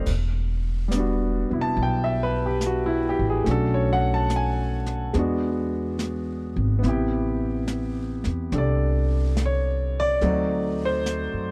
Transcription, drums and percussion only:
0.06 brush sweep soft
0.06 kick medium
0.06 snare soft
0.06 crash medium
0.91 snare soft
0.91 hi-hat pedal medium
1.76 brush sweep soft
2.61 snare soft
2.61 hi-hat pedal medium
3.46 brush sweep soft
3.46 snare soft
4.30 snare medium
4.30 hi-hat pedal medium
4.86 snare soft
5.14 brush sweep soft
5.14 snare soft
5.99 snare soft
5.99 hi-hat pedal medium
6.84 brush sweep soft
6.84 snare soft
7.68 snare medium
7.68 hi-hat pedal medium
8.24 snare soft
8.52 brush sweep soft
8.52 snare soft
9.37 snare soft
9.37 hi-hat pedal soft
10.21 brush sweep soft
10.21 snare soft
11.06 snare medium
11.06 hi-hat pedal medium

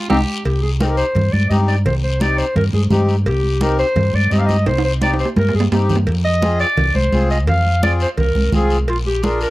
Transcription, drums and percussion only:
0.10 high conga loud
0.10 high timbale loud
0.10 long guiro loud
0.45 cowbell loud
0.45 long guiro medium
0.63 high conga soft
0.80 high conga medium
0.80 short guiro medium
0.97 short guiro medium
1.15 cowbell medium
1.15 high conga soft
1.15 low conga medium
1.15 long guiro medium
1.33 high conga medium
1.51 high conga medium
1.51 short guiro medium
1.68 short guiro medium
1.86 cowbell loud
1.86 low conga medium
1.86 long guiro medium
2.03 high conga soft
2.20 high conga medium
2.20 short guiro medium
2.38 short guiro medium
2.56 cowbell medium
2.56 high conga soft
2.56 low conga medium
2.56 long guiro medium
2.73 high conga medium
2.90 high conga medium
2.90 low conga medium
2.90 short guiro medium
3.09 short guiro medium
3.26 cowbell loud
3.26 long guiro medium
3.44 high conga soft
3.61 high conga medium
3.61 short guiro medium
3.79 short guiro medium
3.96 cowbell medium
3.96 high conga soft
3.96 low conga medium
3.96 long guiro medium
4.13 high conga medium
4.31 high conga medium
4.31 short guiro medium
4.49 high conga medium
4.49 short guiro medium
4.66 cowbell loud
4.66 high timbale medium
4.66 long guiro medium
4.78 high timbale medium
4.84 high conga soft
5.02 high conga medium
5.02 high timbale medium
5.02 short guiro medium
5.14 high timbale medium
5.19 short guiro medium
5.25 low timbale medium
5.36 cowbell medium
5.36 high conga medium
5.36 low timbale medium
5.36 long guiro medium
5.49 low timbale medium
5.60 low timbale medium
5.72 low timbale medium
5.72 short guiro medium
5.89 low conga medium
5.89 short guiro medium
5.96 low timbale medium
6.07 cowbell loud
6.07 long guiro medium
6.25 high conga soft
6.42 high conga medium
6.42 short guiro medium
6.59 short guiro medium
6.77 cowbell medium
6.77 high conga soft
6.77 low conga medium
6.77 long guiro medium
6.95 high conga medium
7.12 high conga medium
7.12 short guiro medium
7.30 short guiro medium
7.47 cowbell loud
7.47 low conga medium
7.47 long guiro medium
7.66 high conga soft
7.83 high conga medium
7.83 short guiro medium
8.00 short guiro medium
8.17 cowbell medium
8.17 high conga soft
8.17 low conga medium
8.17 long guiro medium
8.35 high conga medium
8.52 high conga medium
8.52 low conga medium
8.52 short guiro medium
8.70 short guiro medium
8.88 cowbell loud
8.88 long guiro medium
9.06 high conga soft
9.23 high conga medium
9.23 short guiro medium
9.41 short guiro medium

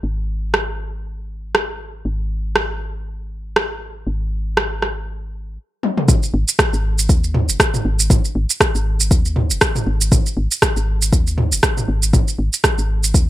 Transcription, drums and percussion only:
0.54 cross-stick medium
1.55 cross-stick medium
2.56 cross-stick medium
3.56 cross-stick medium
4.57 cross-stick medium
4.82 cross-stick medium
5.83 high tom medium
5.98 mid tom medium
6.08 kick loud
6.08 mid tom medium
6.08 shaker medium
6.23 shaker soft
6.48 shaker medium
6.59 kick loud
6.59 cross-stick loud
6.59 shaker medium
6.73 shaker soft
6.99 shaker medium
7.09 kick loud
7.09 shaker medium
7.24 shaker soft
7.34 mid tom medium
7.49 shaker medium
7.60 kick loud
7.60 cross-stick loud
7.60 shaker medium
7.74 mid tom medium
7.74 shaker soft
7.99 shaker medium
8.10 kick loud
8.10 mid tom medium
8.10 shaker medium
8.25 shaker soft
8.50 shaker medium
8.61 kick loud
8.61 cross-stick loud
8.61 shaker medium
8.75 shaker soft
9.00 shaker medium
9.11 kick loud
9.11 shaker medium
9.25 shaker soft
9.36 mid tom medium
9.51 shaker medium
9.61 kick loud
9.61 cross-stick loud
9.61 shaker medium
9.75 mid tom medium
9.75 shaker soft
10.01 shaker medium
10.12 kick loud
10.12 mid tom medium
10.12 shaker medium
10.26 shaker soft
10.52 shaker medium
10.62 kick loud
10.62 cross-stick loud
10.62 shaker medium
10.77 shaker soft
11.02 shaker medium
11.13 kick loud
11.13 shaker medium
11.27 shaker soft
11.38 mid tom medium
11.52 shaker medium
11.63 kick loud
11.63 cross-stick loud
11.63 shaker medium
11.77 mid tom medium
11.77 shaker soft
12.03 shaker medium
12.13 kick loud
12.13 mid tom medium
12.13 shaker medium
12.28 shaker soft
12.53 shaker medium
12.64 kick loud
12.64 cross-stick loud
12.64 shaker medium
12.78 shaker soft
13.04 shaker medium
13.14 kick loud
13.14 shaker medium

